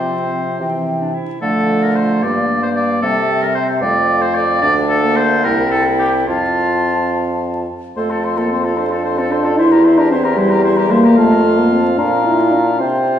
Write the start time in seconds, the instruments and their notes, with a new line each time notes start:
Already playing: bassoon C3, french horn F3, clarinet C4, oboe C5, flute G5
0.60 bassoon C3, french horn E3, clarinet C4, flute G5
1.01 clarinet D4
1.14 clarinet E4
1.41 bassoon D3, french horn F3, clarinet A3, oboe A4, flute F5
1.83 oboe A#4
1.96 oboe C5
2.23 bassoon G2, french horn G3, clarinet A#3, oboe D5, flute F5
2.63 oboe C5
2.76 oboe D5
3.02 bassoon C3, french horn G3, clarinet C4, oboe A4, flute E5
3.42 oboe A#4
3.55 oboe C5
3.81 bassoon F2, french horn A3, clarinet C4, oboe D5, flute F5
4.22 oboe C5
4.35 oboe D5
4.62 bassoon D2, french horn A3, clarinet D4, oboe D5, flute F5
4.89 oboe A4
5.04 french horn A#3
5.16 oboe C5
5.44 bassoon C2, french horn C4, clarinet E4, oboe A#4, flute G5
5.71 oboe A4
5.99 oboe G4
6.28 bassoon F2, french horn C4, oboe F4, clarinet F4, flute A5
7.96 bassoon F2, french horn A3, clarinet A4, oboe C5, flute C6
8.10 clarinet F4, oboe A4, flute A5
8.23 clarinet A4, oboe C5, flute C6
8.37 french horn A#3, clarinet F4, oboe A4, flute A5
8.50 french horn C4, clarinet A4, oboe C5, flute C6
8.64 clarinet F4, oboe A4, flute A5
8.77 french horn D4, clarinet A4, oboe C5, flute C6
8.91 clarinet F4, oboe A4, flute A5
9.04 clarinet A4, oboe C5, flute C6
9.18 french horn C4, clarinet F4, oboe A4, flute A5
9.31 french horn D4, clarinet A4, oboe C5, flute C6
9.44 clarinet F4, oboe A4, flute A5
9.58 bassoon E2, french horn E4, clarinet E4, oboe C5, flute C6
9.71 clarinet G4, oboe A#4, flute A#5
9.85 clarinet E4, oboe C5, flute C6
9.97 french horn D4, clarinet G4, oboe A#4, flute A#5
10.11 french horn C4, clarinet E4, oboe C5, flute C6
10.24 clarinet G4, oboe A#4, flute A#5
10.37 french horn G3, clarinet E4, oboe C5, flute C6
10.51 clarinet G4, oboe A#4, flute A#5
10.64 clarinet E4, oboe C5, flute C6
10.77 clarinet G4, oboe A#4, flute A#5
10.90 french horn A#3, clarinet E4, oboe C5, flute C6
11.04 clarinet G4, oboe A#4, flute A#5
11.17 bassoon F2, french horn A3, clarinet F4, oboe F5, flute A5
11.58 french horn A#3
11.71 french horn C4
11.98 bassoon A#2, french horn D4, clarinet F4, oboe F5, flute A#5
12.25 french horn E4
12.52 french horn D4
12.80 bassoon C3, french horn C4, clarinet F4, oboe C5, flute G5